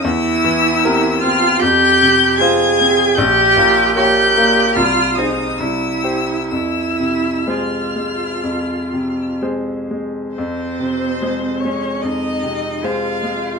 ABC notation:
X:1
M:4/4
L:1/8
Q:1/4=74
K:Fm
V:1 name="Violin"
=e'3 f' g'2 a'2 | g'2 g'2 f' e' =e'2 | =e'2 f'4 z2 | c3 d e2 f2 |]
V:2 name="Cello"
=E3 F G2 A2 | G2 G2 F E =E2 | =E2 F4 z2 | C3 D E2 F2 |]
V:3 name="Grand piano"
=E,, =E, [CGB] C F,, C, [CFc] C | B,,, B,, [B,Gd] B, C,, [Ac] C,, [Gc] | F,, C, [A,Ac] A, F,, C, [A,Ac] A, | F,, C, [A,Ac] A, F,, C, [A,Ac] A, |]